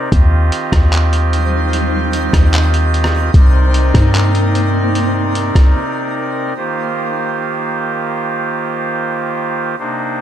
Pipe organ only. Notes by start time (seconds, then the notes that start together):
Already playing: C4
0.12 D#3 F4 G4 D#5
3.34 C3 C4 D#4 A#4 D5
6.56 D#3 A#3 F4 G4 C5
9.79 C3 A#3 D4 D#4 C5